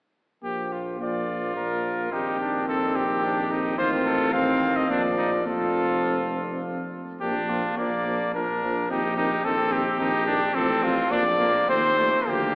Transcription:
0.43 A#1 F3 A#3 G4
0.72 F4
1.00 F3 A#3 F4 D5
1.55 F3 A#3 A#4
2.12 A#1 D#3 C4 D#4 G4
2.40 D4
2.68 C4 A4
2.96 G4
3.24 D4
3.51 D#4
3.78 A1 D#3 C4 F4 C5
4.06 A4
4.32 D#3 C4 F5
4.76 D#5
4.89 A#1 F3 A#3 D4 D5
5.18 D#4
5.46 F1 F3 C4 F4 A4
7.20 A#1 F3 A#3 D4 G4
7.49 F3 A#3 F4
7.77 A#1 F3 A#3 D5
8.05 F3 A#3
8.34 A#1 F3 A#3 D4 A#4
8.61 F3 A#3
8.88 A#1 D#3 C4 D#4 G4
9.17 D#3 C4 D#4
9.44 A#1 D#3 C4 A4
9.71 D#3 C4 G4
9.98 A#1 D#3 C4 D#4
10.27 D#3 C4 D4
10.55 A1 F3 C4 A4
10.82 F3 C4 F4
11.10 A#1 F3 A#3 D4 D5
11.38 F3 A#3
11.67 D#2 F3 A3 C4 C5
11.96 F3 A3
12.27 D2 F3 A#3 G4

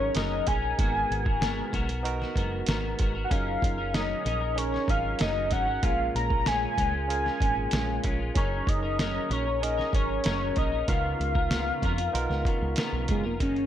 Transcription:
Already playing: F#3 C#4 D#4 G#4 A#4 C#5
0.15 F#1 F#3 C#4 D#4 A#4 D#5, snare, closed hi-hat
0.47 A#1 F#3 C#4 D#4 A#4 G#5, kick, closed hi-hat
0.62 C#4 D#4 A#4
0.77 G#1 G#3 A#3 B3 D#4 F#4 A#4, kick, closed hi-hat
0.84 B3
1.10 G#1, closed hi-hat
1.25 B3 F#4 A#4, kick
1.40 G#3 B3 F#4 A#4, snare, closed hi-hat
1.72 B1 G#3 B3 F#4 A#4, kick, closed hi-hat
1.88 B3 F#4 A#4, closed hi-hat
2.03 B3 D#4 F#4 A#4, closed hi-hat
2.20 B3 F#4 A#4, snare
2.35 F#1 G#3 B3 F#4 A#4, kick, closed hi-hat
2.67 G#1 G#3 B3 F#4 A#4, snare, closed hi-hat
2.99 G#1 G#3 B3 F#4 A#4, kick, closed hi-hat
3.15 B3 F#4 A#4
3.24 F#5
3.29 F#1 F#3 C#4 D#4 G#4 A#4 F5, kick, closed hi-hat
3.62 F#1, kick, closed hi-hat
3.78 C#4 D#4 A#4
3.94 F#3 C#4 D#4 A#4 D#5, snare, closed hi-hat
4.24 A#1 F#3 C#4 D#4 A#4, closed hi-hat
4.41 C#4 D#4 A#4
4.56 C#4 D#4 G#4 A#4 C#5, closed hi-hat
4.72 C#4 D#4 A#4, snare
4.88 G#1 F#3 C#4 D#4 A#4 F5, kick, closed hi-hat
5.19 F#1 F#3 C#4 D#4 A#4 D#5, snare, closed hi-hat
5.50 G#1 F#3 C#4 D#4 A#4 F#5, kick, closed hi-hat
5.67 C#4 D#4 A#4
5.82 A#1 A#2 G#3 C#4 F4 G#4 A#4 F5, kick, closed hi-hat
6.15 A#1 A#5, closed hi-hat
6.29 G#3 C#4 F4, kick
6.45 A#2 G#3 C#4 F4 G#5, snare, closed hi-hat
6.77 C#2 A#2 G#3 C#4 F4, kick, closed hi-hat
6.93 G#3 C#4 F4
7.08 C#4 F4 G#4 A#4 G#5, closed hi-hat
7.24 G#3 C#4 F4, snare
7.39 G#1 A#2 G#3 C#4 F4, kick, closed hi-hat
7.71 A#1 A#2 G#3 C#4 F4, snare, closed hi-hat
8.03 A#1 A#2 G#3 C#4 F4, kick, closed hi-hat
8.19 G#3 C#4 F4
8.34 F#1 F#3 C#4 D#4 G#4 A#4 C#5, kick, closed hi-hat
8.67 F#1 D#5, kick, closed hi-hat
8.83 C#4 D#4 A#4
8.99 F#3 C#4 D#4 A#4 D#5, snare, closed hi-hat
9.30 A#1 F#3 C#4 D#4 A#4 C#5, closed hi-hat
9.46 C#4 D#4 A#4
9.61 C#4 D#4 G#4 A#4 D#5, closed hi-hat
9.78 C#4 D#4 A#4, snare
9.93 G#1 F#3 C#4 D#4 A#4 C#5, kick, closed hi-hat
10.24 F#1 F#3 C#4 D#4 A#4, snare, closed hi-hat
10.56 A#1 F#3 C#4 D#4 A#4 D#5, kick, closed hi-hat
10.72 C#4 D#4 A#4
10.87 C#2 C#3 B3 D#4 F4 A#4 F5, kick, closed hi-hat
11.20 C#2, closed hi-hat
11.35 B3 F4 A#4, kick
11.51 C#3 B3 F4 A#4, snare, closed hi-hat
11.82 F2 C#3 B3 F4 A#4, kick, closed hi-hat
11.98 B3 F4 A#4, closed hi-hat
12.12 B1 B3 D#4 F4 A#4, closed hi-hat
12.29 C#2 B3 F4 A#4, snare
12.45 C#3 B3 F4 A#4, kick, closed hi-hat
12.62 C#2
12.76 C#3 B3 F4 A#4, snare, closed hi-hat
12.93 B1
13.08 F#1 C#3 G#3 B3 F4 A#4, kick, closed hi-hat
13.24 F1 A#3 B3 F4 A#4
13.39 F#1 F#2 D#3 A#3 C#4 D#4 G#4 A#4, kick, closed hi-hat
13.56 closed hi-hat

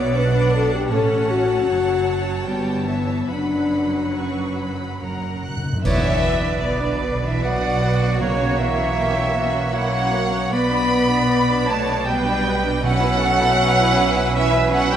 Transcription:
Already playing: B1 B2 B3 C#5 D5 E5 F#5
0.15 D4 B4 F#5
0.54 A4
0.74 G4
0.89 A1 A2 C#4 A4 C#5 F#5 A5
1.30 F#4
1.66 F#1 F#2 F#3
2.46 G1 G2 G3 B3 G5
2.88 E3 E5
3.30 F#1 F#2 F#3 D4 B4 F#5 B5
4.16 C#4 C#6
4.58 B5
5.01 F#1 F#2 A#4 F#5 A#5
5.09 F#2
5.18 F#2
5.26 F#2
5.34 F#2
5.41 F#2 F#6
5.48 F#2
5.57 F#2
5.65 F#2
5.73 F#2
5.83 B1 B2 E3 B3 B4 C#5 D5 E5, concert bass drum, crash
6.05 D4 D5
6.24 B3 B4
6.45 D4 D5
6.65 D3 B3 B4 D5
6.84 D4 D5
7.05 B3 B4
7.24 E3 D4 D5 E5
7.43 F#3 B3 F#4 B4 D5 F#5
7.62 D4 D5
7.82 B3 B4
8.00 D4 D5
8.19 B2 C#3 A#3 A#4 C#5
8.38 C#4 C#5
8.56 E3 A#3 A#4 E5
8.75 C#4 C#5
8.95 A#3 G4 A#4
9.13 C#4 C#5
9.32 A#3 A#4
9.36 F#4
9.51 C#4 C#5
9.71 F#3 A#3 A#4 C#5 F#5
9.75 E4
9.91 C#4 C#5
10.12 A#3 A#4 C#5
10.32 C#4 C#5
10.52 B1 B2 B3 B4 D5 B5
10.72 D4 D5
10.92 B3 B4
11.12 D4 D5
11.30 B3 B4 D5
11.51 D4 D5
11.68 A3 B3 B4 C#5 A5
11.89 D4 D5
12.05 G3 B3 B4 G5
12.27 D4 D5
12.46 B3 B4
12.66 D4 D5
12.82 B2 F#3 C#4 B4 C#5 E5 F#5
13.03 E4 B4
13.21 C#4 A4 C#5
13.40 E4 B4
13.59 C#4 B4 C#5
13.79 E4 B4
13.97 C#4 C#5
14.16 E4 B4
14.35 E3 C#4 C#5 E5
14.54 E4 B4
14.72 F#3 C#4 C#5 F#5
14.91 G3 E4 B4 G5

